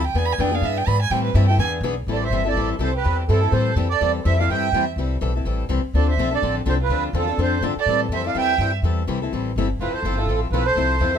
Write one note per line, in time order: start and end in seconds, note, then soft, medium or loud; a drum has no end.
0.00 0.14 D2 loud
0.07 0.19 G5 medium
0.14 0.38 E2 medium
0.14 0.33 E3 medium
0.14 0.33 B3 medium
0.14 0.33 D4 medium
0.14 0.33 G#4 medium
0.14 0.27 G#5 medium
0.25 0.33 B5 loud
0.32 0.42 G#5 medium
0.38 0.61 F2 loud
0.38 0.49 E3 medium
0.38 0.50 B3 medium
0.38 0.50 D4 loud
0.38 0.50 G#4 loud
0.38 0.56 G5 medium
0.51 0.62 B3 medium
0.51 0.62 D4 medium
0.51 0.62 G#4 medium
0.51 0.66 F5 loud
0.61 0.86 G2 loud
0.61 0.81 E3 medium
0.61 0.81 B3 medium
0.61 0.81 D4 medium
0.61 0.81 G#4 medium
0.61 0.79 E5 medium
0.77 0.88 G5 medium
0.87 1.10 G#2 loud
0.87 0.97 E3 medium
0.87 0.97 B3 medium
0.87 0.98 D4 loud
0.87 0.98 G#4 loud
0.87 1.01 B5 loud
1.02 1.12 G#5 medium
1.10 1.34 A2 medium
1.10 1.29 E3 medium
1.10 1.29 G3 medium
1.10 1.29 C4 medium
1.10 1.29 E4 medium
1.10 1.30 A4 medium
1.10 1.23 G5 medium
1.24 1.36 B4 medium
1.34 1.57 G2 loud
1.34 1.45 E3 loud
1.34 1.46 G3 medium
1.34 1.45 C4 loud
1.34 1.46 E4 loud
1.34 1.46 A4 loud
1.34 1.47 E5 medium
1.48 1.59 C4 medium
1.48 1.59 E4 medium
1.48 1.59 A4 medium
1.48 1.58 G5 medium
1.57 1.80 E2 loud
1.57 1.77 E3 medium
1.57 1.77 B3 medium
1.57 1.77 D4 medium
1.57 1.77 G#4 medium
1.57 1.67 G#5 loud
1.81 2.05 B1 loud
1.81 1.94 E3 loud
1.81 1.94 B3 loud
1.81 1.94 D4 loud
1.81 1.94 G#4 loud
2.07 2.30 A1 medium
2.07 2.26 E3 medium
2.07 2.26 G3 medium
2.07 2.26 C4 medium
2.07 2.26 E4 medium
2.07 2.26 A4 medium
2.11 2.22 A4 medium
2.11 2.24 D5 medium
2.24 2.45 C5 medium
2.24 2.48 E5 medium
2.30 2.54 G1 medium
2.30 2.42 E3 medium
2.30 2.42 G3 medium
2.30 2.42 C4 medium
2.30 2.42 E4 medium
2.30 2.43 A4 medium
2.45 2.56 C4 soft
2.45 2.56 E4 medium
2.45 2.55 A4 medium
2.45 2.69 A4 medium
2.45 2.69 D5 medium
2.54 2.78 A1 medium
2.54 2.74 E3 medium
2.54 2.74 G3 medium
2.54 2.74 C4 medium
2.54 2.74 E4 medium
2.54 2.74 A4 medium
2.79 3.03 C2 medium
2.79 2.90 E3 medium
2.79 2.90 G3 medium
2.79 2.90 C4 medium
2.79 2.90 E4 medium
2.79 2.90 A4 medium
2.79 2.94 A4 medium
2.79 2.94 C5 medium
2.96 3.17 G4 medium
2.96 3.18 B4 medium
3.04 3.28 E2 medium
3.04 3.22 E3 medium
3.04 3.22 G3 medium
3.04 3.22 C4 medium
3.04 3.22 E4 medium
3.04 3.23 A4 medium
3.29 3.51 G2 medium
3.29 3.39 E3 medium
3.29 3.39 G3 medium
3.29 3.39 C4 medium
3.29 3.51 E4 medium
3.29 3.39 E4 medium
3.29 3.54 A4 medium
3.29 3.39 A4 medium
3.42 3.52 C4 soft
3.42 3.52 E4 medium
3.42 3.52 A4 medium
3.52 3.75 A2 medium
3.52 3.70 E3 medium
3.52 3.70 G3 medium
3.52 3.70 C4 medium
3.52 3.70 E4 medium
3.52 3.75 A4 medium
3.52 3.71 A4 medium
3.52 3.75 C5 medium
3.75 3.99 F2 medium
3.75 3.86 E3 medium
3.75 3.86 G3 medium
3.75 3.87 C4 medium
3.75 3.87 E4 medium
3.75 3.87 A4 medium
3.90 4.13 A4 medium
3.90 4.12 D5 loud
4.01 4.24 E2 medium
4.01 4.19 E3 medium
4.01 4.19 G3 medium
4.01 4.19 C4 medium
4.01 4.19 E4 medium
4.01 4.19 A4 medium
4.24 4.48 F2 loud
4.24 4.35 E3 medium
4.24 4.35 G3 medium
4.24 4.35 C4 medium
4.24 4.35 E4 medium
4.24 4.35 A4 medium
4.24 4.37 C5 medium
4.24 4.39 E5 loud
4.38 4.49 C4 medium
4.38 4.49 E4 medium
4.38 4.49 A4 medium
4.38 4.48 D5 medium
4.38 4.50 F5 medium
4.49 4.71 G2 medium
4.49 4.67 E3 medium
4.49 4.67 G3 medium
4.49 4.67 C4 medium
4.49 4.67 E4 medium
4.49 4.68 A4 medium
4.49 4.85 E5 medium
4.49 4.85 G5 loud
4.72 4.96 E2 medium
4.72 4.84 E3 medium
4.72 4.84 G3 medium
4.72 4.84 C4 medium
4.72 4.84 E4 medium
4.72 4.84 A4 medium
4.96 5.20 C2 medium
4.96 5.15 E3 medium
4.96 5.16 G3 medium
4.96 5.15 C4 medium
4.96 5.16 E4 medium
4.96 5.16 A4 medium
5.21 5.45 B1 medium
5.21 5.31 E3 medium
5.21 5.31 G3 medium
5.21 5.31 C4 medium
5.21 5.32 E4 medium
5.21 5.32 A4 medium
5.36 5.45 C4 medium
5.36 5.45 E4 medium
5.36 5.45 A4 medium
5.45 5.69 A1 medium
5.45 5.63 E3 medium
5.45 5.63 G3 medium
5.45 5.63 C4 medium
5.45 5.64 E4 medium
5.45 5.64 A4 medium
5.69 5.82 C2 medium
5.69 5.79 E3 medium
5.69 5.79 G3 medium
5.69 5.80 C4 medium
5.69 5.80 E4 medium
5.69 5.80 A4 medium
5.84 muted upright bass stroke soft
5.93 6.17 D2 medium
5.93 6.12 D3 medium
5.93 6.12 F3 medium
5.93 6.12 C4 medium
5.93 6.12 D4 medium
5.93 6.12 A4 medium
5.93 6.07 A4 medium
5.93 6.07 D5 medium
6.10 6.31 C5 medium
6.10 6.33 E5 medium
6.17 6.41 B1 medium
6.17 6.28 D3 medium
6.17 6.28 F3 medium
6.17 6.29 C4 medium
6.17 6.29 D4 medium
6.17 6.29 A4 medium
6.31 6.42 C4 soft
6.31 6.42 D4 soft
6.31 6.41 A4 medium
6.31 6.55 A4 medium
6.31 6.55 D5 medium
6.42 6.65 A1 medium
6.42 6.60 D3 medium
6.42 6.60 F3 medium
6.42 6.60 C4 medium
6.42 6.60 D4 medium
6.42 6.61 A4 medium
6.66 6.88 C2 medium
6.66 6.76 D3 medium
6.66 6.76 F3 medium
6.66 6.76 C4 medium
6.66 6.76 D4 medium
6.66 6.77 A4 loud
6.66 6.75 A4 medium
6.66 6.74 C5 medium
6.82 7.03 F4 medium
6.82 7.04 B4 medium
6.89 7.13 D2 medium
6.89 7.08 D3 medium
6.89 7.08 F3 medium
6.89 7.08 C4 medium
6.89 7.09 D4 medium
6.89 7.09 A4 medium
7.13 7.37 E2 loud
7.13 7.24 D3 medium
7.13 7.25 F3 medium
7.13 7.25 C4 medium
7.13 7.25 D4 medium
7.13 7.25 A4 medium
7.18 7.39 F4 medium
7.18 7.41 A4 medium
7.27 7.38 C4 soft
7.27 7.38 D4 medium
7.27 7.38 A4 medium
7.38 7.60 F2 medium
7.38 7.56 D3 medium
7.38 7.57 F3 medium
7.38 7.57 C4 medium
7.38 7.57 D4 medium
7.38 7.57 A4 medium
7.38 7.61 A4 medium
7.42 7.63 C5 medium
7.61 7.74 G2 medium
7.61 7.73 D3 loud
7.61 7.73 F3 medium
7.61 7.73 C4 medium
7.61 7.73 D4 loud
7.61 7.73 A4 loud
7.76 8.00 A4 medium
7.76 muted upright bass stroke soft
7.80 8.01 D5 loud
7.86 8.08 A2 medium
7.86 8.05 E3 medium
7.86 8.05 G3 medium
7.86 8.06 C4 medium
7.86 8.06 E4 medium
7.86 8.06 A4 medium
8.09 8.33 F2 medium
8.09 8.21 E3 medium
8.09 8.22 G3 medium
8.09 8.22 C4 medium
8.09 8.22 E4 medium
8.13 8.22 A4 medium
8.13 8.25 C5 medium
8.13 8.25 E5 loud
8.24 8.34 C4 medium
8.24 8.35 E4 medium
8.24 8.35 A4 medium
8.24 8.35 D5 medium
8.24 8.37 F5 medium
8.35 8.58 E2 medium
8.35 8.53 E3 medium
8.35 8.53 G3 medium
8.35 8.53 C4 medium
8.35 8.54 E4 medium
8.35 8.53 A4 medium
8.35 8.71 E5 medium
8.35 8.72 G5 loud
8.58 8.82 G2 medium
8.58 8.70 E3 medium
8.58 8.70 G3 medium
8.58 8.70 C4 medium
8.58 8.70 E4 medium
8.58 8.70 A4 medium
8.82 9.06 E2 medium
8.82 9.01 E3 medium
8.82 9.02 G3 medium
8.82 9.02 C4 medium
8.82 9.02 E4 medium
8.82 9.02 A4 medium
9.07 9.31 C2 medium
9.07 9.18 E3 medium
9.07 9.18 G3 medium
9.07 9.18 C4 medium
9.07 9.18 E4 loud
9.07 9.18 A4 medium
9.22 9.32 C4 medium
9.22 9.32 E4 medium
9.22 9.32 A4 medium
9.32 9.55 A1 medium
9.32 9.50 E3 medium
9.32 9.50 G3 medium
9.32 9.50 C4 medium
9.32 9.51 E4 medium
9.32 9.51 A4 medium
9.56 9.79 G1 medium
9.56 9.67 E3 medium
9.56 9.67 G3 medium
9.56 9.67 C4 medium
9.56 9.67 E4 medium
9.56 9.67 A4 medium
9.79 9.92 F1 medium
9.79 9.98 F3 medium
9.79 9.98 C4 medium
9.79 9.99 E4 medium
9.79 9.93 F4 medium
9.79 9.99 A4 medium
9.79 9.94 B4 medium
9.93 10.16 A4 medium
9.93 10.19 C5 medium
9.93 muted upright bass stroke soft
10.03 10.26 G1 medium
10.03 10.15 F3 medium
10.03 10.15 C4 medium
10.03 10.15 E4 medium
10.03 10.15 A4 medium
10.17 10.28 C4 medium
10.17 10.28 E4 medium
10.17 10.40 F4 medium
10.17 10.28 A4 medium
10.17 10.40 A4 medium
10.26 10.50 A1 medium
10.26 10.46 F3 medium
10.26 10.47 C4 medium
10.26 10.47 E4 medium
10.30 10.47 A4 medium
10.51 10.75 B1 medium
10.51 10.63 F3 medium
10.51 10.63 C4 medium
10.51 10.63 E4 medium
10.51 10.65 F4 medium
10.51 10.63 A4 medium
10.51 10.67 B4 medium
10.66 11.11 A4 medium
10.66 11.16 C5 loud
10.76 10.99 C2 medium
10.76 10.95 F3 medium
10.76 10.95 C4 medium
10.76 10.95 E4 medium
10.76 10.95 A4 medium
11.00 11.18 E2 loud
11.00 11.11 F3 medium
11.00 11.11 C4 medium
11.00 11.11 E4 medium
11.00 11.11 A4 medium
11.12 11.18 A4 medium
11.12 11.18 C5 medium